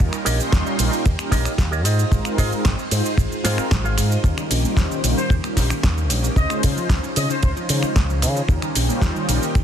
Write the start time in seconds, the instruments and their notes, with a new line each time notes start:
0.00 fingered electric bass D#2, analog synth pad G3 C#4 D#4 F4 A#4, string machine A#3 D#4 G4, kick, cabasa
0.13 finger snap, cabasa
0.25 fingered electric bass A#1, clean electric guitar G4 A#4 C#5 D#5, open hi-hat, ride, cabasa
0.39 analog synth pad G3 C#4 D#4 F4 C6, muted fingered electric bass stroke, cabasa
0.52 fingered electric bass D#2, muted clean electric guitar stroke, kick, snare, ride, cabasa
0.65 muted clean electric guitar stroke, cabasa
0.79 fingered electric bass A#1, analog synth pad G3 C#4 D#4 F4 A#4, open hi-hat, ride, cabasa
0.93 cabasa
1.06 fingered electric bass D#2, kick, ride, cabasa
1.19 analog synth pad G3 C#4 D#4 F4 A#4, finger snap, cabasa
1.31 fingered electric bass A#1, clean electric guitar G4 A#4 C#5 D#5, kick, snare, open hi-hat, ride, cabasa
1.45 finger snap, muted fingered electric bass stroke, cabasa
1.58 fingered electric bass D#2, kick, snare, ride, cabasa
1.71 clean electric guitar G4 A#4 C#5 D#5, cabasa
1.84 fingered electric bass G#2, string machine G#3 F4 C5, clean electric guitar F4 G#4 C5 D#5, open hi-hat, ride, cabasa
1.99 cabasa
2.11 fingered electric bass G#1, analog synth pad G#3 C4 D#4 F4 A#4, kick, ride, cabasa
2.25 finger snap, cabasa
2.37 fingered electric bass G#2, clean electric guitar F4 G#4 C5 D#5, kick, open hi-hat, ride, cabasa
2.51 analog synth pad G#3 C4 D#4 F4 A#4, muted fingered electric bass stroke, cabasa
2.64 fingered electric bass G#1, muted clean electric guitar stroke, kick, snare, ride, cabasa
2.78 muted clean electric guitar stroke, cabasa
2.91 fingered electric bass G#2, analog synth pad G#3 C4 D#4 F4 C5, open hi-hat, ride, cabasa
3.06 cabasa
3.17 fingered electric bass G#1, kick, ride, cabasa
3.31 muted fingered electric bass stroke, cabasa
3.44 fingered electric bass G#2, analog synth pad G#3 C4 D#4 F4 A#4, clean electric guitar F4 G#4 C5 F5, snare, open hi-hat, ride, cabasa
3.58 finger snap, muted fingered electric bass stroke, cabasa
3.71 fingered electric bass G#1, kick, snare, ride, cabasa
3.84 clean electric guitar F4 G#4 C5 F5, cabasa
3.98 fingered electric bass G#2, finger snap, open hi-hat, ride, cabasa
4.12 cabasa
4.24 fingered electric bass D#2, synth arpeggio sound C#3, analog synth pad G3 C#4 D#4 F4 A#4, string machine A#3 C#4 G4, kick, ride, cabasa
4.38 synth arpeggio sound D#3, finger snap, cabasa
4.51 fingered electric bass A#1, synth arpeggio sound C#4, open hi-hat, ride, cabasa
4.64 analog synth pad G3 C#4 D#4 F4 C5, synth arpeggio sound A#3, muted fingered electric bass stroke, cabasa
4.77 fingered electric bass D#2, synth arpeggio sound G3, kick, snare, ride, cabasa
4.91 synth arpeggio sound D#3, cabasa
5.04 fingered electric bass A#1, synth arpeggio sound C#3, analog synth pad G3 C#4 D#4 F4 A#4, open hi-hat, ride, cabasa
5.17 synth arpeggio sound D#3, trumpet section C5, cabasa
5.30 fingered electric bass D#2, synth arpeggio sound C#3, kick, ride, cabasa
5.43 analog synth pad G3 C#4 D#4 F4 A#4, synth arpeggio sound A#3, finger snap, cabasa
5.57 fingered electric bass A#1, synth arpeggio sound G3, kick, snare, open hi-hat, ride, cabasa
5.70 synth arpeggio sound D#3, finger snap, muted fingered electric bass stroke, cabasa
5.83 fingered electric bass D#2, synth arpeggio sound C#4, kick, snare, ride, cabasa
5.97 synth arpeggio sound A#3, cabasa
6.10 fingered electric bass A#1, synth arpeggio sound G3, open hi-hat, ride, cabasa
6.23 synth arpeggio sound A#3, cabasa
6.36 fingered electric bass C#2, synth arpeggio sound C3, analog synth pad G#3 C#4 D#4 F4 C5, string machine D#4 F4 C5, trumpet section D#5, kick, ride, cabasa
6.50 synth arpeggio sound C#3, finger snap, cabasa
6.63 fingered electric bass C#3, synth arpeggio sound G#3, kick, open hi-hat, ride, cabasa
6.76 synth arpeggio sound F3, analog synth pad G#3 C#4 D#4 F4 C5, muted fingered electric bass stroke, cabasa
6.89 fingered electric bass C#2, synth arpeggio sound D#3, kick, snare, ride, cabasa
7.03 synth arpeggio sound C#3, cabasa
7.16 synth arpeggio sound C3, fingered electric bass C#3, analog synth pad G#3 C#4 D#4 F4 C#5, trumpet section D#5, open hi-hat, ride, cabasa
7.30 synth arpeggio sound C#3, trumpet section C5, cabasa
7.42 fingered electric bass C#2, synth arpeggio sound C3, trumpet section C5, kick, ride, cabasa
7.57 synth arpeggio sound F3, cabasa
7.68 fingered electric bass C#3, synth arpeggio sound D#3, analog synth pad G#3 C#4 D#4 F4 C5, open hi-hat, ride, cabasa
7.83 synth arpeggio sound C#3, finger snap, muted fingered electric bass stroke, cabasa
7.96 fingered electric bass C#2, synth arpeggio sound G#3, kick, snare, ride, cabasa
8.09 synth arpeggio sound F3, cabasa
8.22 fingered electric bass C#3, synth arpeggio sound D#3, finger snap, open hi-hat, ride, cabasa
8.36 synth arpeggio sound F3, cabasa
8.48 fingered electric bass D#2, synth arpeggio sound C#3, analog synth pad G3 C#4 D#4 F4 A#4, string machine A#3 D#4 G4, kick, ride, cabasa
8.62 synth arpeggio sound D#3, finger snap, cabasa
8.75 fingered electric bass A#1, synth arpeggio sound C#4, open hi-hat, ride, cabasa
8.88 analog synth pad G3 C#4 D#4 F4 C5, synth arpeggio sound A#3, muted fingered electric bass stroke, cabasa
9.02 fingered electric bass D#2, synth arpeggio sound G3, kick, snare, ride, cabasa
9.16 synth arpeggio sound D#3, cabasa
9.28 fingered electric bass A#1, synth arpeggio sound C#3, analog synth pad G3 C#4 D#4 F4 A#4, open hi-hat, ride, cabasa
9.42 synth arpeggio sound D#3, cabasa
9.55 fingered electric bass D#2, synth arpeggio sound C#3, kick, ride, cabasa